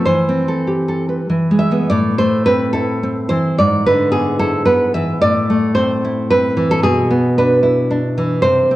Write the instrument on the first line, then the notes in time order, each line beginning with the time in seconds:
nylon-string guitar
0.05 E3 C5
0.29 C4
0.48 A4
0.67 G4
0.88 A4
1.09 B4
1.30 E3
1.51 G#3
1.59 E5
1.71 G#3 B3
1.90 A2 D5
2.18 A3 C5
2.46 C4 B4
2.73 E4 A4
3.03 C4
3.29 E3 C5
3.59 G#2 D5
3.86 D3 B4
4.12 B3 G#4
4.39 E4 A4
4.65 B3 B4
4.94 E3 E5
5.21 A2 D5
5.50 A3
5.75 C4 C5
6.05 E4
6.31 C4 B4
6.57 E3
6.71 A4
6.83 B2 G#4
7.11 B3
7.38 D4 B4
7.63 E4
7.91 D4
8.18 E3
8.42 C3 C5
8.71 C4